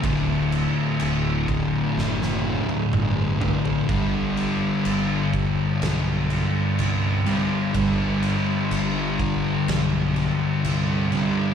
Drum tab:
CC |x-x-x-x---------|x-x-x-x-x-x-x-x-|x-x-x-x-x-x-x-x-|
SD |--------oo------|--------o-------|--------o-------|
T1 |-----------o----|----------------|----------------|
T2 |------------o---|----------------|----------------|
FT |--------------oo|----------------|----------------|
BD |o-----o---------|o-----o---------|o-----o---------|